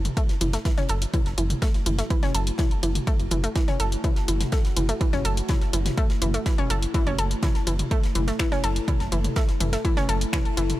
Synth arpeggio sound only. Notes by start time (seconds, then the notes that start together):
0.17 A3
0.41 E3
0.53 A3
0.65 E3
0.78 C#4
0.89 A4
1.14 E3
1.38 E3
1.62 A3
1.86 E3
1.99 A3
2.10 E3
2.23 C#4
2.35 A4
2.59 E3
2.83 E3
3.07 A3
3.31 E3
3.44 A3
3.56 E3
3.68 C#4
3.80 A4
4.04 E3
4.28 E3
4.52 A3
4.77 E3
4.89 A3
5.01 E3
5.13 C#4
5.25 A4
5.49 E3
5.73 E3
5.98 A3
6.22 E3
6.34 A3
6.46 E3
6.58 C#4
6.70 A4
6.94 E3
7.07 C#4
7.19 A4
7.43 E3
7.67 E3
7.91 A3
8.15 E3
8.28 A3
8.39 E3
8.52 C#4
8.64 A4
8.88 E3
9.12 E3
9.36 A3
9.61 E3
9.73 A3
9.85 E3
9.97 C#4
10.09 A4
10.33 E3
10.57 E3